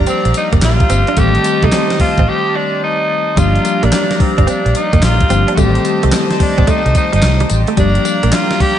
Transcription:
Already playing: F3 G3 A#3 D4 G4 D5 F5 A#5
0.06 C4, muted fingered electric bass stroke, closed hi-hat, tambourine
0.25 A#1, muted clean electric guitar stroke, closed hi-hat
0.34 D#4, closed hi-hat, tambourine
0.53 F1 A#3, kick, closed hi-hat
0.62 A#1 F4, muted clean electric guitar stroke, snare, clap, closed hi-hat, tambourine
0.80 kick, closed hi-hat
0.90 G1 C4, closed hi-hat, tambourine
1.07 D4, closed hi-hat
1.16 A1 D#3 G3 A3 C4 G4 C5 D#5 A5, kick, closed hi-hat, tambourine
1.35 closed hi-hat
1.44 muted clean electric guitar stroke, closed hi-hat, tambourine
1.62 C2 A3 D#4, kick, closed hi-hat
1.72 C4, snare, clap, closed hi-hat, tambourine
1.90 snare, closed hi-hat
2.00 F4, muted fingered electric bass stroke, muted clean electric guitar stroke, kick, open hi-hat
2.18 A1 C4, kick, closed hi-hat
2.29 G4
2.56 D4
2.84 D#4
3.36 G1 F3 G3 A#3 D4 F4 G4 D5 F5 A#5, kick, closed hi-hat, tambourine
3.56 closed hi-hat
3.65 muted clean electric guitar stroke, closed hi-hat, tambourine
3.83 A#1 A#3 D4, closed hi-hat
3.92 D4, snare, clap, closed hi-hat, tambourine
4.11 snare, closed hi-hat
4.17 D4, muted clean electric guitar stroke, muted fingered electric bass stroke, kick, open hi-hat
4.21 C4
4.38 G1 D4, kick, closed hi-hat
4.47 C4 D4, muted fingered electric bass stroke, closed hi-hat, tambourine
4.66 A#1, muted clean electric guitar stroke, closed hi-hat
4.75 D#4, closed hi-hat, tambourine
4.93 F1 A#3, kick, closed hi-hat
5.02 A#1 F4, muted clean electric guitar stroke, snare, clap, closed hi-hat, tambourine
5.20 kick, closed hi-hat
5.29 G1 F3 G3 A#3 C4 D4 G4, closed hi-hat, tambourine
5.48 D4, closed hi-hat
5.55 A1 D#3 G3 A3 C4 F#4 G4 C5 D#5 A5, kick, closed hi-hat, tambourine
5.59 F#4 G4
5.65 G4
5.75 closed hi-hat
5.85 muted clean electric guitar stroke, closed hi-hat, tambourine
6.03 C2 A3, closed hi-hat
6.12 C4, snare, clap, closed hi-hat, tambourine
6.31 snare, closed hi-hat
6.40 D4, muted clean electric guitar stroke, muted fingered electric bass stroke, kick, open hi-hat
6.58 A1 C4, kick, closed hi-hat
6.67 A3 D#4, muted fingered electric bass stroke, kick, closed hi-hat, tambourine
6.86 C2, muted clean electric guitar stroke, closed hi-hat
6.95 D#4, kick, closed hi-hat, tambourine
7.13 G1 G3 D#4, closed hi-hat
7.22 C2, snare, clap, closed hi-hat, tambourine
7.40 G3, closed hi-hat
7.50 A1, muted clean electric guitar stroke, closed hi-hat, tambourine
7.67 A3, closed hi-hat
7.77 G1 F3 G3 A#3 D4 G4 D5 F5 A#5, kick, closed hi-hat, tambourine
7.95 closed hi-hat
8.05 muted clean electric guitar stroke, closed hi-hat, tambourine
8.23 A#1 A#3, closed hi-hat
8.32 D4 F4, snare, clap, closed hi-hat, tambourine
8.51 snare, closed hi-hat
8.60 G4, muted clean electric guitar stroke, muted fingered electric bass stroke, kick, open hi-hat

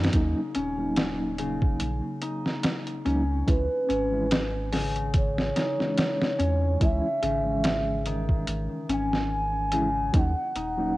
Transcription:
Already playing: C#3 C#4 D#4
0.04 snare, closed hi-hat
0.13 D#2 F#3 A#3 C#4 D#4, kick, closed hi-hat
0.55 D#1 C#4, closed hi-hat
0.77 F#3 A#3 C#4 D#4
0.96 snare, closed hi-hat
1.38 C#3, closed hi-hat
1.62 kick
1.80 A#1, closed hi-hat
2.22 D#4, closed hi-hat
2.46 snare
2.63 snare, closed hi-hat
2.87 closed hi-hat
3.05 C#2 F#3 A#3 C#4 D#4, closed hi-hat
3.46 C#2 E3 G#3 C#4 E4 B4, kick, closed hi-hat
3.88 G#1 C#4, closed hi-hat
4.12 E3 G#3 C#4 E4
4.31 snare, closed hi-hat
4.72 C#3, snare, open hi-hat
4.96 closed hi-hat
5.14 C#5, kick, closed hi-hat
5.38 snare
5.56 D#4, snare, closed hi-hat
5.78 E3 G#3 C#4, snare
5.98 snare, closed hi-hat
6.22 snare
6.39 E2 C#4, closed hi-hat
6.80 C#2 E3 G#3 C#4 E4 E5, kick, closed hi-hat
7.22 G#1 C#3, closed hi-hat
7.44 E3 G#3 C#4
7.64 snare, closed hi-hat
8.06 D#3, closed hi-hat
8.29 kick
8.47 G#1, closed hi-hat
8.89 G#1 C#4 G#5, closed hi-hat
9.13 snare
9.72 C#3 E3 G#3 C#4 E4, closed hi-hat
10.13 D#2 F#3 A#3 C#4 D#4, kick, closed hi-hat
10.17 F#5
10.56 D#1 D#4, closed hi-hat
10.78 F#3 A#3 C#4 D#4

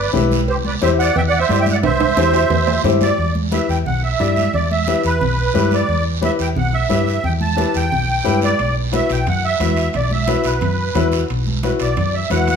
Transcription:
Already playing: B4 D5
0.13 B1 E4 G4 B4, high conga, low conga, short guiro
0.31 high conga, short guiro
0.48 C2 G4 C5, cowbell, high conga, long guiro
0.65 B4 D5, high conga
0.81 E2 E4 G4 C5 E5, high conga, short guiro
0.99 D5 F#5, short guiro
1.16 E2 E5 G5, cowbell, low conga, long guiro
1.28 D5 F#5
1.33 high conga
1.38 C5 E5
1.49 G2 E4 G4 D5, high conga, low timbale, short guiro
1.60 E5 G5
1.66 high conga, short guiro
1.71 D5 F#5
1.83 C2 C5 E5, cowbell, high conga, low conga, high timbale, long guiro
2.00 high conga, high timbale
2.17 E2 E4 G4 C5, high conga, high timbale, short guiro
2.33 low timbale, short guiro
2.50 E2, cowbell, low conga, low timbale, long guiro
2.67 high conga, low timbale
2.84 G2 E4 G4 C5, high conga, low conga, low timbale, short guiro
3.01 D5, high conga, low timbale, short guiro
3.18 E2, high conga, long guiro
3.35 high conga
3.51 E4 G4 B4 E5, high conga, short guiro
3.69 E2 G5, short guiro
3.86 B1 F#5, low conga, long guiro
4.03 E5, high conga
4.19 G2 E4 G4 D5, high conga, short guiro
4.36 high conga, short guiro
4.53 E2 D5, high conga, low conga, long guiro
4.71 E5, high conga
4.87 E4 G4 B4, high conga, short guiro
5.04 E2 B4, short guiro
5.21 B1, low conga, long guiro
5.38 high conga
5.54 G2 E4 G4 B4, high conga, low conga, short guiro
5.71 D5, high conga, short guiro
5.89 E2, high conga, long guiro
6.21 E4 G4 B4 E5, high conga, short guiro
6.39 E2 G5, short guiro
6.55 B1 F#5, low conga, long guiro
6.73 E5, high conga
6.89 G2 E4 G4 B4, high conga, short guiro
7.07 short guiro
7.24 E2 G5, high conga, low conga, long guiro
7.41 A5, high conga
7.56 E4 G4 B4, high conga, short guiro
7.75 E2 G5, short guiro
7.91 B1, low conga, long guiro
8.09 high conga
8.24 G2 E4 G4 B4, high conga, short guiro
8.41 D5, high conga, short guiro
8.59 B1, high conga, high timbale, long guiro
8.92 E4 F#4 B4 E5, high conga, high timbale, short guiro
9.10 B1 G5, high timbale, short guiro
9.26 F#2 F#5, low conga, high timbale, long guiro
9.44 E5, high conga
9.60 E2 E4 F#4 B4, high conga, high timbale, short guiro
9.77 high timbale, short guiro
9.93 B1 D5, high conga, low conga, high timbale, long guiro
10.11 E5, high conga
10.27 E4 F#4 B4, high conga, high timbale, short guiro
10.44 B1 B4, high timbale, short guiro
10.61 F#2, low conga, high timbale, long guiro
10.79 high conga
10.95 E2 E4 F#4 B4, high conga, low conga, high timbale, low timbale, short guiro
11.12 high timbale, short guiro
11.28 B1, high conga, high timbale, long guiro
11.47 high conga
11.63 E4 F#4 B4, high conga, high timbale, short guiro
11.80 B1 D5, high timbale, short guiro
11.97 F#2, low conga, high timbale, long guiro
12.14 E5, high conga
12.30 E2 E4 F#4 B4 F#5, high conga, high timbale, short guiro
12.47 F#5, high conga, high timbale, short guiro

